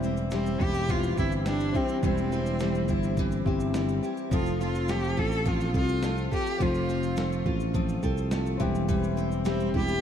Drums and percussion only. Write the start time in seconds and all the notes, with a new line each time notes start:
0.03 shaker
0.17 shaker
0.31 snare, shaker
0.46 shaker
0.60 kick
0.74 shaker
0.89 kick, shaker
1.03 shaker
1.17 kick, shaker
1.32 shaker
1.46 snare, shaker
1.60 shaker
1.75 kick, shaker
1.89 shaker
2.03 kick, shaker
2.18 shaker
2.32 shaker
2.46 shaker
2.59 snare, shaker
2.75 shaker
2.88 kick, shaker
3.03 shaker
3.17 kick, shaker
3.32 shaker
3.46 kick
3.60 shaker
3.74 snare, shaker
3.88 shaker
4.03 shaker
4.17 shaker
4.32 kick, shaker
4.46 shaker
4.61 shaker
4.75 shaker
4.88 snare, shaker
5.04 shaker
5.17 kick
5.32 shaker
5.46 kick, shaker
5.60 shaker
5.74 kick, shaker
5.88 shaker
6.03 snare, shaker
6.17 shaker
6.32 kick, shaker
6.46 shaker
6.60 kick, shaker
6.74 shaker
6.89 shaker
7.03 shaker
7.17 snare, shaker
7.32 shaker
7.46 kick
7.60 shaker
7.74 kick, shaker
7.89 shaker
8.03 kick, shaker
8.17 shaker
8.31 snare, shaker
8.46 shaker
8.60 kick, shaker
8.75 shaker
8.89 kick, shaker
9.04 shaker
9.18 shaker
9.32 shaker
9.45 snare, shaker
9.60 shaker
9.74 kick
9.88 shaker